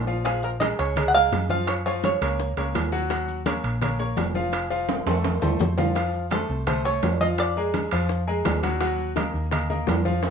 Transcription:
Already playing: A#1
0.07 F3 F4 F5, high conga, maracas
0.24 F3 F4 G#4 F5, high bongo, high conga, high timbale, maracas
0.43 A#4, high conga, maracas
0.60 G#3 G#4 A#4 D#5, high bongo, high conga, high timbale, maracas
0.78 C#2 C#5, high bongo, high conga, high timbale, maracas
0.96 G#3 G#4 A#4, high bongo, high conga, low conga, high timbale, maracas
1.08 F#5
1.14 G#3 G#4 A#4 F5, high bongo, high conga
1.32 F#2, high bongo, low bongo, high conga, high timbale, maracas
1.49 F3 F4 F5, high bongo, high conga, maracas
1.67 C#5, high bongo, high conga, high timbale, maracas
1.86 F3 F4 C#5 F5, high conga
2.03 C#5, high bongo, high conga, high timbale, maracas
2.21 C#2 A#3 A#4 C#5, high bongo, high timbale, maracas
2.39 high bongo, high conga, maracas
2.57 C#2 A#3 A#4 C#5, high bongo, high conga, high timbale
2.75 D#2, high bongo, low bongo, high conga, high timbale, low timbale, maracas
2.92 F#3 F#4 F#5, high bongo, high conga, maracas
3.10 F#3 F#4 F#5, high bongo, high conga, high timbale, maracas
3.28 high conga, maracas
3.46 A#3 A#4 C#5, high bongo, high conga, high timbale, maracas
3.63 A#1, high bongo, high timbale, maracas
3.82 A#3 A#4 C#5, high bongo, high conga, low conga, high timbale, maracas
3.99 A#3 A#4 C#5, high bongo, high conga, maracas
4.16 F1, high bongo, low bongo, high conga, high timbale, low timbale, maracas
4.34 F3 F4 F5, high bongo, high conga, maracas
4.52 high bongo, high conga, high timbale, maracas
4.70 F3 F4 F5, high conga, maracas
4.89 high bongo, high conga, high timbale, maracas
5.06 F2 A3 A4 C5, high bongo, high conga, high timbale, maracas
5.24 high bongo, high conga, high timbale, maracas
5.42 D#2 A3 A4 C5, high bongo, low conga, low timbale, maracas
5.59 F2, low bongo, low conga, maracas
5.77 F3 F4 F5, low bongo, low conga, low timbale, maracas
5.95 F3 F4 F5, high bongo, high conga, high timbale, maracas
6.13 high bongo, high conga, maracas
6.30 A3 A4 C5, high bongo, high conga, high timbale, low timbale, maracas
6.48 C2, high bongo, high conga, maracas
6.67 A3 A4 C5, high bongo, high conga, low conga, high timbale, maracas
6.85 A3 A4 C#5, high bongo, high conga, maracas
7.02 F2, high bongo, low bongo, high conga, high timbale, low timbale, maracas
7.20 F3 F4 D#5 F5, high conga, maracas
7.38 D5, high bongo, high conga, high timbale, maracas
7.56 G#3 G#4 A#4, high bongo, high conga, maracas
7.74 high bongo, high conga, high timbale, low timbale, maracas
7.91 F2 F3 F4 F5, high conga, high timbale, maracas
8.09 high bongo, high conga, maracas
8.27 G#3 G#4 A#4, high bongo, high conga, maracas
8.45 D#2, high bongo, low bongo, high conga, high timbale, low timbale, maracas
8.63 F#3 F#4 F#5, high bongo, high conga, high timbale, maracas
8.80 F#3 F#4 F#5, high bongo, high conga, high timbale, maracas
8.99 high bongo, high conga, maracas
9.16 A#3 A#4 D#5, high bongo, high conga, high timbale, low timbale, maracas
9.34 D#2, high bongo, high conga, maracas
9.51 A#3 A#4 D#5, high bongo, high conga, low conga, high timbale, maracas
9.69 A#3 A#4 D#5, high bongo, high conga, low conga, maracas
9.87 F2, high bongo, low bongo, high conga, high timbale, low timbale, maracas
10.05 F3 F4 F5, high conga, maracas
10.23 high bongo, high conga, high timbale, maracas

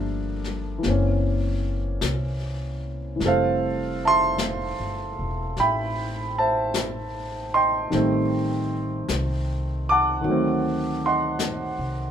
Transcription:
Already playing: G1 F3 G3 A#3 D4 A4 A#4 E5
0.44 snare
0.78 E3
0.83 F#1 A#3 C4, brush sweep, snare
0.90 C#4
2.01 C2, brush sweep, snare, hi-hat pedal
3.16 E3 G3
3.20 F1 A3, brush sweep, snare
3.26 C4 A4 C5 F5
4.05 E5 A5 C6
4.38 brush sweep, snare, hi-hat pedal
4.80 G1
5.19 E1
5.57 A1 E5 G5 B5, brush sweep, snare
6.38 C5 E5 A5
6.74 brush sweep, snare, hi-hat pedal
7.54 D#5 G5 C6
7.90 A1 D#3 G3 A3, brush sweep, snare
7.94 C4
9.09 C2, brush sweep, snare, hi-hat pedal
9.89 F#5 A5 D6
10.21 D2 D#3 F#3, brush sweep
10.28 A3 C4
11.06 D#5 F#5 C6
11.39 brush sweep, snare, hi-hat pedal
11.78 C2

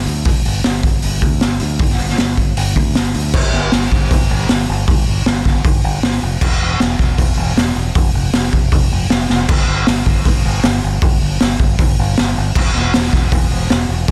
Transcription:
0.06 D2, open hi-hat
0.25 G1, kick, open hi-hat
0.45 G1, open hi-hat
0.64 G1, snare, open hi-hat
0.83 kick, open hi-hat
1.02 G1, open hi-hat
1.22 D2, kick, open hi-hat
1.41 G1, snare, open hi-hat
1.60 D2, open hi-hat
1.79 G1, kick, open hi-hat
1.90 snare
1.99 G1, open hi-hat
2.09 snare
2.18 G1, snare, open hi-hat
2.37 kick, open hi-hat
2.57 G1, open hi-hat
2.76 D2, kick, open hi-hat
2.95 G1, snare, open hi-hat
3.15 D2, open hi-hat
3.34 G1, kick, crash
3.53 G1, snare
3.72 G1, snare, open hi-hat
3.91 G1, kick
4.11 G1, kick, open hi-hat
4.31 G1
4.49 G1, snare, open hi-hat
4.69 G1
4.88 G1, kick, open hi-hat
5.08 G1
5.26 G1, snare, open hi-hat
5.45 G1, kick, snare
5.65 G1, kick, open hi-hat
5.84 G1
6.03 G1, snare, open hi-hat
6.22 F1
6.41 E1, kick, crash
6.61 E1
6.80 E1, snare, open hi-hat
6.99 E1, kick, snare
7.18 E1, kick, open hi-hat
7.37 E1
7.56 E1, snare, open hi-hat
7.75 E1
7.95 F1, kick, open hi-hat
8.14 F1
8.33 F1, snare, open hi-hat
8.52 F1, kick
8.72 F1, kick, open hi-hat
8.91 F1
9.10 F1, snare, open hi-hat
9.30 F1, snare
9.49 G1, kick, crash
9.68 G1
9.87 G1, snare, open hi-hat
10.06 G1, kick
10.25 G1, kick, open hi-hat
10.45 G1
10.63 G1, snare, open hi-hat
10.84 G1
11.02 G1, kick, open hi-hat
11.21 G1
11.40 G1, snare, open hi-hat
11.60 G1, kick
11.79 G1, kick, open hi-hat
11.99 G1
12.17 G1, snare, open hi-hat
12.38 G1
12.55 E1, kick, crash
12.75 E1, snare
12.94 snare, open hi-hat
13.13 E1, kick, snare
13.32 E1, kick, open hi-hat
13.51 E1
13.70 E1, snare, open hi-hat
13.89 E1
14.08 open hi-hat

